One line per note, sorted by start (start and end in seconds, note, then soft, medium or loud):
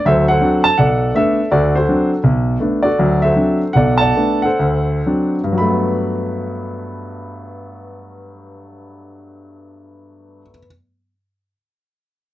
0.05 0.37 D2 medium
0.05 0.37 F#3 medium
0.05 0.29 A4 medium
0.05 0.28 C5 medium
0.05 0.27 E5 medium
0.28 0.76 A4 medium
0.28 0.75 C5 medium
0.28 0.62 F#5 medium
0.41 0.66 F#3 medium
0.41 0.66 C4 soft
0.41 0.66 D4 medium
0.64 0.76 A5 loud
0.78 1.10 B1 medium
0.78 1.16 A4 medium
0.78 1.47 D5 medium
0.78 1.11 F#5 medium
1.15 1.39 A3 medium
1.15 1.39 B3 soft
1.15 1.40 D4 medium
1.15 1.50 A4 medium
1.15 1.49 E5 medium
1.51 1.82 D2 medium
1.51 1.76 F#4 medium
1.51 1.76 A4 medium
1.51 1.75 D5 medium
1.75 2.22 F#4 soft
1.75 2.21 A4 soft
1.75 2.08 C5 medium
1.89 2.12 F#3 soft
1.89 2.13 C4 soft
1.89 2.13 D4 medium
2.24 2.55 B1 medium
2.60 2.85 A3 soft
2.60 2.85 B3 soft
2.60 2.86 D4 medium
2.83 3.57 F#4 medium
2.83 3.23 A4 medium
2.83 3.22 D5 medium
2.99 3.31 D2 medium
2.99 3.31 F#3 medium
3.22 3.73 A4 medium
3.22 3.73 C5 medium
3.22 3.58 E5 medium
3.36 3.62 F#3 medium
3.36 3.62 C4 soft
3.36 3.62 D4 medium
3.73 4.11 B1 medium
3.73 4.44 A4 medium
3.73 4.00 D5 medium
3.73 4.00 F#5 medium
3.98 4.56 D5 medium
3.98 4.41 F#5 medium
3.98 4.39 A5 medium
4.16 4.46 A3 soft
4.16 4.46 B3 soft
4.16 4.46 D4 medium
4.42 5.34 A4 medium
4.42 5.35 C5 medium
4.42 5.33 F#5 medium
4.59 4.99 D2 medium
5.06 5.40 F#3 soft
5.06 5.40 C4 soft
5.06 5.40 D4 medium
5.44 10.41 G2 medium
5.52 10.49 F#3 medium
5.58 10.58 A3 medium
5.58 10.51 B5 medium
5.69 10.66 B3 medium